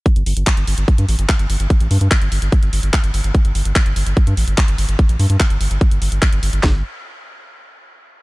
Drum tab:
HH |xxoxxxoxxxoxxxox|xxoxxxoxxxoxxxox|xxoxxxoxxxoxxxox|xxoxxxoxxxoxxxox|
CP |----x-------x---|----x-------x---|----x-------x---|----x-------x---|
SD |----------------|----------------|----------------|----------------|
BD |o---o---o---o---|o---o---o---o---|o---o---o---o---|o---o---o---o---|

HH |----------------|
CP |x---------------|
SD |o---------------|
BD |o---------------|